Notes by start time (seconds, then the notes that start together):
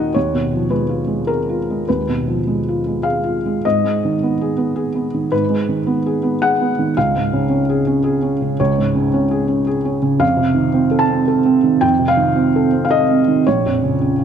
Already playing: D#2 A#2 F#3 A#3 D#4 F#4 A#4 D#5 F#5
0.14 D#2 C#5
0.33 B2
0.54 F3
0.70 G#3 B4
0.89 F4
1.07 G#3
1.27 G#4 A#4
1.49 F4
1.70 G#3
1.89 D#2 B4
2.08 B2
2.28 F3
2.47 G#3
2.68 F4
2.86 G#3
3.03 G#4 F5
3.24 F4
3.46 G#3
3.65 G#2 D#5
3.84 G#3
4.05 D#3
4.23 B3
4.41 G#4
4.57 B3
4.76 G#4
4.95 B3
5.14 D#3
5.32 G#2 B4
5.50 G#3
5.69 D#3
5.87 B3
6.06 G#4
6.23 B3
6.42 G#4 F#5
6.61 B3
6.79 D#3
6.97 C#2 F5
7.15 G#2
7.33 C#3
7.50 C#4
7.69 G#4
7.87 C#4
8.04 G#4
8.22 C#4
8.42 C#3
8.60 C#2 C#5
8.78 G#2
8.95 C#3
9.14 C#4
9.31 G#4
9.47 C#4
9.67 G#4
9.85 C#4
10.02 C#3
10.20 F2 F5
10.37 C3
10.54 D#3
10.74 C4
10.91 A4
10.99 A5
11.10 C4
11.28 A4
11.45 C4
11.64 D#3
11.81 F2 G5
11.99 C3
12.08 F5
12.17 D#3
12.36 C4
12.56 A4
12.73 C4
12.85 F5
12.91 A4 D#5
13.10 C4
13.28 D#3
13.47 A#1 C#5
13.66 F2
13.83 C#3
14.01 C#4
14.19 F4